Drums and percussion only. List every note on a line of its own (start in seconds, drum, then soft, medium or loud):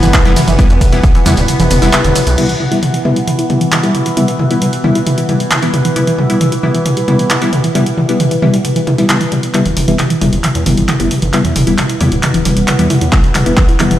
0.03 closed hi-hat medium
0.03 shaker soft
0.14 kick loud
0.14 clap loud
0.14 closed hi-hat medium
0.14 mid tom medium
0.14 ride medium
0.14 shaker soft
0.25 closed hi-hat medium
0.25 shaker soft
0.36 open hi-hat loud
0.36 mid tom medium
0.36 ride medium
0.36 shaker medium
0.48 closed hi-hat medium
0.48 shaker soft
0.59 kick loud
0.59 closed hi-hat medium
0.59 mid tom medium
0.59 ride medium
0.59 shaker soft
0.70 closed hi-hat medium
0.70 shaker soft
0.81 kick medium
0.81 open hi-hat loud
0.81 mid tom medium
0.81 ride medium
0.81 shaker medium
0.93 closed hi-hat medium
0.93 shaker soft
1.03 kick loud
1.03 closed hi-hat medium
1.03 mid tom medium
1.03 ride medium
1.03 shaker soft
1.15 closed hi-hat medium
1.15 shaker soft
1.26 open hi-hat loud
1.26 mid tom medium
1.26 ride medium
1.26 shaker medium
1.37 closed hi-hat medium
1.37 shaker soft
1.48 closed hi-hat medium
1.48 mid tom medium
1.48 ride medium
1.48 shaker soft
1.60 closed hi-hat medium
1.60 shaker soft
1.71 open hi-hat loud
1.71 mid tom medium
1.71 ride medium
1.71 shaker medium
1.82 open hi-hat medium
1.82 shaker soft
1.93 clap loud
1.93 closed hi-hat medium
1.93 mid tom medium
1.93 ride medium
1.93 shaker soft
2.04 closed hi-hat medium
2.04 shaker soft
2.16 open hi-hat loud
2.16 mid tom medium
2.16 ride medium
2.16 shaker medium
2.27 closed hi-hat medium
2.27 shaker soft
2.38 closed hi-hat medium
2.38 mid tom medium
2.38 crash medium
2.49 closed hi-hat medium
2.60 mid tom medium
2.72 closed hi-hat medium
2.83 closed hi-hat medium
2.83 mid tom medium
2.94 closed hi-hat medium
3.05 mid tom medium
3.16 closed hi-hat medium
3.28 closed hi-hat medium
3.28 mid tom medium
3.39 closed hi-hat medium
3.50 closed hi-hat soft
3.50 mid tom medium
3.61 closed hi-hat medium
3.72 clap loud
3.72 closed hi-hat medium
3.72 mid tom medium
3.83 closed hi-hat medium
3.95 closed hi-hat medium
3.95 mid tom medium
4.06 closed hi-hat medium
4.17 closed hi-hat medium
4.17 mid tom medium
4.28 closed hi-hat medium
4.39 mid tom medium
4.51 closed hi-hat medium
4.62 closed hi-hat medium
4.62 mid tom medium
4.73 closed hi-hat medium
4.84 mid tom medium
4.95 closed hi-hat medium
5.07 closed hi-hat medium
5.07 mid tom medium
5.18 closed hi-hat medium
5.29 closed hi-hat soft
5.29 mid tom medium
5.40 closed hi-hat medium
5.51 clap loud
5.51 closed hi-hat medium
5.51 mid tom medium
5.63 closed hi-hat medium
5.74 closed hi-hat medium
5.74 mid tom medium
5.85 closed hi-hat medium
5.96 closed hi-hat medium
5.96 mid tom medium
6.07 closed hi-hat soft
6.18 mid tom medium
6.30 closed hi-hat medium
6.41 closed hi-hat medium
6.41 mid tom medium
6.52 closed hi-hat medium
6.63 mid tom medium
6.75 closed hi-hat medium
6.86 closed hi-hat medium
6.86 mid tom medium
6.97 closed hi-hat medium
7.08 closed hi-hat soft
7.08 mid tom medium
7.19 closed hi-hat medium
7.30 clap loud
7.30 closed hi-hat medium
7.30 mid tom medium
7.42 closed hi-hat medium
7.53 closed hi-hat medium
7.53 mid tom medium
7.64 closed hi-hat medium
7.75 closed hi-hat medium
7.75 mid tom loud
7.86 closed hi-hat soft
7.98 mid tom medium
8.09 closed hi-hat medium
8.20 closed hi-hat medium
8.20 mid tom medium
8.31 closed hi-hat soft
8.42 mid tom medium
8.54 closed hi-hat medium
8.65 closed hi-hat medium
8.65 mid tom medium
8.76 closed hi-hat medium
8.87 closed hi-hat soft
8.87 mid tom medium
8.98 closed hi-hat soft
9.10 clap loud
9.10 closed hi-hat medium
9.10 mid tom loud
9.21 closed hi-hat soft
9.32 closed hi-hat soft
9.32 mid tom medium
9.43 closed hi-hat medium
9.54 clap soft
9.54 closed hi-hat medium
9.54 mid tom medium
9.66 closed hi-hat medium
9.77 open hi-hat loud
9.77 mid tom medium
9.88 closed hi-hat medium
9.99 clap soft
9.99 closed hi-hat medium
9.99 mid tom medium
10.10 closed hi-hat medium
10.21 open hi-hat loud
10.21 mid tom medium
10.33 closed hi-hat medium
10.44 clap soft
10.44 closed hi-hat medium
10.44 mid tom medium
10.55 closed hi-hat medium
10.66 open hi-hat loud
10.66 mid tom medium
10.77 closed hi-hat medium
10.89 clap medium
10.89 closed hi-hat medium
10.89 mid tom medium
11.00 closed hi-hat medium
11.11 open hi-hat loud
11.11 mid tom medium
11.22 closed hi-hat medium
11.33 clap medium
11.33 closed hi-hat medium
11.33 mid tom medium
11.45 closed hi-hat medium
11.56 open hi-hat loud
11.56 mid tom medium
11.67 closed hi-hat medium
11.78 clap medium
11.78 closed hi-hat medium
11.78 mid tom medium
11.89 closed hi-hat medium
12.01 open hi-hat loud
12.01 mid tom medium
12.12 closed hi-hat medium
12.23 clap medium
12.23 closed hi-hat medium
12.23 mid tom medium
12.34 closed hi-hat medium
12.45 open hi-hat loud
12.45 mid tom medium
12.57 closed hi-hat medium
12.68 clap medium
12.68 closed hi-hat medium
12.68 mid tom medium
12.79 closed hi-hat medium
12.90 open hi-hat loud
12.90 mid tom medium
13.01 closed hi-hat medium
13.12 kick loud
13.12 clap medium
13.12 closed hi-hat medium
13.12 mid tom medium
13.24 closed hi-hat medium
13.35 clap medium
13.35 open hi-hat loud
13.35 mid tom loud
13.46 closed hi-hat medium
13.57 kick loud
13.57 clap medium
13.57 closed hi-hat medium
13.57 mid tom medium
13.68 closed hi-hat medium
13.80 clap medium
13.80 open hi-hat loud
13.80 mid tom medium
13.91 closed hi-hat medium